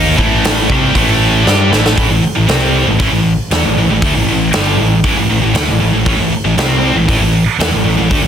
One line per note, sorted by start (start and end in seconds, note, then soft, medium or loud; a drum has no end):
0.00 0.16 D#2 medium
0.00 0.16 D#3 medium
0.00 0.17 A#3 medium
0.00 0.17 D#4 medium
0.17 0.66 A1 medium
0.17 0.68 A2 medium
0.17 0.68 E3 loud
0.17 0.68 A3 medium
0.17 kick medium
0.44 snare loud
0.44 open hi-hat medium
0.69 0.93 C2 loud
0.69 0.94 C3 loud
0.69 0.94 G3 loud
0.69 0.94 C4 loud
0.69 kick loud
0.94 1.43 A1 medium
0.94 1.45 A2 medium
0.94 1.44 E3 medium
0.94 1.45 A3 loud
0.94 kick medium
0.94 open hi-hat medium
1.44 1.70 G2 medium
1.44 1.70 G3 medium
1.44 1.71 D4 medium
1.44 1.71 G4 loud
1.44 snare medium
1.71 1.96 A1 medium
1.71 1.95 A2 medium
1.71 1.96 E3 medium
1.71 1.97 A3 loud
1.71 snare medium
1.86 snare medium
1.97 2.09 A1 medium
1.97 2.09 A2 medium
1.97 2.09 E3 medium
1.97 kick loud
1.97 open hi-hat soft
2.10 2.22 A1 medium
2.10 2.22 A2 medium
2.10 2.23 E3 medium
2.23 muted distorted electric guitar stroke medium
2.23 muted fingered electric bass stroke soft
2.36 2.48 A1 medium
2.36 2.47 A2 medium
2.36 2.48 E3 medium
2.48 2.84 C2 loud
2.48 2.86 C3 medium
2.48 2.86 G3 medium
2.48 2.86 C4 medium
2.48 snare loud
2.48 open hi-hat soft
2.87 2.99 A1 medium
2.87 2.98 A2 medium
2.87 2.99 E3 medium
2.99 3.12 A1 medium
2.99 3.12 A2 medium
2.99 3.12 E3 loud
2.99 kick loud
2.99 open hi-hat medium
3.13 3.36 A1 medium
3.13 3.33 A2 medium
3.13 3.33 E3 medium
3.50 3.62 E2 medium
3.50 3.63 E3 medium
3.50 3.64 B3 medium
3.50 snare loud
3.50 open hi-hat medium
3.63 3.75 A1 medium
3.63 3.76 A2 medium
3.63 3.77 E3 medium
3.77 3.88 A1 medium
3.77 3.88 A2 medium
3.77 3.89 E3 medium
3.88 4.01 A1 medium
3.88 4.02 A2 medium
3.88 4.03 E3 medium
4.02 4.14 D2 medium
4.02 4.15 D3 medium
4.02 4.15 A3 medium
4.02 kick loud
4.02 open hi-hat medium
4.14 4.25 A1 medium
4.14 4.27 A2 medium
4.14 4.27 E3 medium
4.26 4.50 A1 medium
4.26 4.48 A2 medium
4.26 4.48 E3 medium
4.51 4.76 G1 medium
4.51 4.79 G2 medium
4.51 4.78 D3 medium
4.51 snare loud
4.51 open hi-hat medium
4.56 4.79 G3 loud
4.77 5.01 A1 medium
4.77 4.99 A2 medium
4.77 4.99 E3 medium
5.04 5.16 A1 medium
5.04 5.16 A2 medium
5.04 5.16 E3 loud
5.04 kick loud
5.04 open hi-hat medium
5.17 5.29 A1 medium
5.17 5.29 A2 medium
5.17 5.29 E3 medium
5.30 5.42 A1 medium
5.30 5.41 A2 medium
5.30 5.41 E3 medium
5.42 5.54 A1 medium
5.42 5.53 A2 medium
5.42 5.54 E3 medium
5.54 5.66 D2 medium
5.54 5.67 D3 medium
5.54 5.67 A3 loud
5.54 snare loud
5.54 open hi-hat medium
5.67 5.79 A1 medium
5.67 5.79 A2 medium
5.67 5.79 E3 medium
5.80 5.93 A1 medium
5.80 5.92 A2 medium
5.80 5.92 E3 medium
5.93 6.06 A1 medium
5.93 6.05 A2 medium
5.93 6.06 E3 medium
6.06 6.18 A1 medium
6.06 6.18 A2 medium
6.06 6.18 E3 loud
6.06 kick loud
6.06 open hi-hat medium
6.19 6.31 A1 medium
6.19 6.31 A2 medium
6.19 6.32 E3 medium
6.32 muted distorted electric guitar stroke medium
6.32 muted fingered electric bass stroke soft
6.44 6.56 A1 medium
6.44 6.57 A2 medium
6.44 6.57 E3 medium
6.57 6.93 C2 medium
6.57 6.95 C3 medium
6.57 6.95 G3 medium
6.57 6.95 C4 loud
6.57 snare loud
6.57 open hi-hat medium
6.95 7.07 A1 medium
6.95 7.07 A2 medium
6.95 7.07 E3 medium
7.08 7.20 A1 medium
7.08 7.20 A2 medium
7.08 7.20 E3 loud
7.08 kick medium
7.08 open hi-hat medium
7.20 7.45 A1 medium
7.20 7.42 A2 medium
7.20 7.42 E3 medium
7.58 7.71 E2 medium
7.58 7.72 E3 medium
7.58 7.72 B3 medium
7.58 snare loud
7.58 open hi-hat medium
7.72 7.84 A1 medium
7.72 7.84 A2 medium
7.72 7.84 E3 medium
7.85 7.97 A1 medium
7.85 7.97 A2 medium
7.85 7.97 E3 medium
7.98 8.10 A1 medium
7.98 8.11 A2 medium
7.98 8.11 E3 medium
8.11 8.23 D2 medium
8.11 8.23 D3 medium
8.11 8.23 A3 loud
8.11 kick loud
8.11 open hi-hat medium
8.23 8.27 A1 medium
8.23 8.27 A2 medium
8.23 8.27 E3 medium